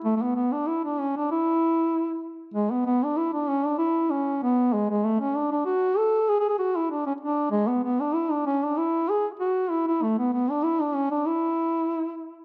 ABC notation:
X:1
M:4/4
L:1/16
Q:"Swing" 1/4=192
K:Emix
V:1 name="Duduk"
A,3/2 A,/2 B,2 B,2 D2 E2 D2 C2 D2 | E12 z4 | G,2 B,2 B,2 D2 E2 D2 C2 D2 | E4 C4 B,4 G,2 G,2 |
A,2 C2 D2 D2 F4 A4 | (3G2 G2 G2 F2 E2 D2 C2 D4 | G,2 B,2 B,2 D2 E2 D2 C2 D2 | E4 G2 z2 F4 E2 E2 |
A,2 B,2 B,2 D2 E2 D2 C2 D2 | E12 z4 |]